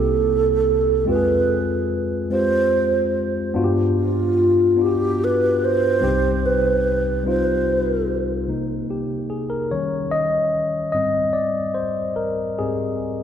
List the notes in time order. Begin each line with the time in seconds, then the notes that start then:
Already playing: C2 C3 A#3 C4 E4 G4 A4
1.05 F2 G#3 C4 F4 G4
1.09 B4
1.15 G#4
2.30 G#3 C4 F4 G4 C5
3.54 G2 B3 D4 F4 F#4
3.64 G4
3.98 F4
4.76 B3 D4 F4
4.80 F#4 G4
4.86 G4
5.24 B4
5.65 C5
6.01 C2 C3 G3 C4 D#4 G4
6.46 B4
7.24 G3 C4 D#4 F4
7.28 C5
8.48 C3 A#3 D#4
8.90 G4
9.30 G#4
9.50 A#4
9.71 D#3 G3 C#4 C#5
10.11 D#5
10.92 G#2 G3 C4 D#5
11.33 D5
11.74 C5
12.16 A#4
12.59 G#2 C4 G4 G#4